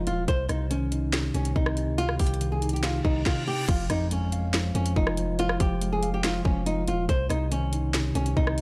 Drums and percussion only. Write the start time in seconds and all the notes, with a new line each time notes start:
0.07 closed hi-hat
0.28 kick, closed hi-hat
0.49 cross-stick, closed hi-hat
0.71 closed hi-hat
0.92 closed hi-hat
1.13 snare, closed hi-hat
1.34 closed hi-hat
1.45 closed hi-hat
1.56 kick
1.66 cross-stick
1.77 closed hi-hat
1.98 closed hi-hat
2.09 cross-stick
2.19 kick, closed hi-hat, open hi-hat
2.27 closed hi-hat
2.34 closed hi-hat
2.41 closed hi-hat
2.62 closed hi-hat
2.69 closed hi-hat
2.76 closed hi-hat
2.83 snare, closed hi-hat
3.05 kick
3.26 kick, snare
3.68 kick, closed hi-hat, crash
3.90 cross-stick, closed hi-hat
4.11 closed hi-hat
4.32 closed hi-hat
4.54 snare, closed hi-hat
4.75 closed hi-hat
4.86 closed hi-hat
4.96 kick
5.07 cross-stick
5.17 closed hi-hat
5.39 closed hi-hat
5.49 cross-stick
5.60 kick, closed hi-hat
5.82 closed hi-hat
6.03 closed hi-hat
6.24 snare, closed hi-hat
6.45 kick
6.66 closed hi-hat
6.88 closed hi-hat
7.09 kick, closed hi-hat
7.30 cross-stick, closed hi-hat
7.52 closed hi-hat
7.73 closed hi-hat
7.94 snare, closed hi-hat
8.15 closed hi-hat
8.26 closed hi-hat
8.37 kick
8.47 cross-stick
8.58 closed hi-hat